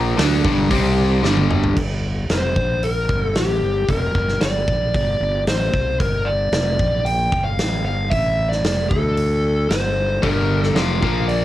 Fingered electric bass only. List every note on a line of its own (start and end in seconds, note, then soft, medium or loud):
0.00 0.15 A#1 medium
0.18 0.43 D2 medium
0.45 0.69 G1 medium
0.71 1.20 C2 medium
1.23 1.73 G1 medium
1.77 2.26 G1 medium
2.29 2.54 F1 medium
2.57 3.06 A#1 medium
3.09 3.34 G1 medium
3.36 3.60 A1 medium
3.62 3.87 G1 medium
3.89 4.13 F1 medium
4.15 4.40 G1 medium
4.42 4.66 G1 medium
4.68 4.93 A#1 medium
4.95 5.19 G1 medium
5.20 5.45 G1 medium
5.47 5.72 A1 medium
5.74 5.98 C2 medium
6.00 6.49 G1 medium
6.52 6.77 F1 medium
6.79 7.29 A#1 medium
7.33 7.57 G1 medium
7.57 7.83 A1 medium
7.85 8.09 G1 medium
8.12 8.61 A1 medium
8.63 8.88 F1 medium
8.91 9.66 D2 medium
9.70 10.19 G1 medium
10.24 10.73 G1 medium
10.75 11.00 F1 medium
11.03 11.45 A#1 medium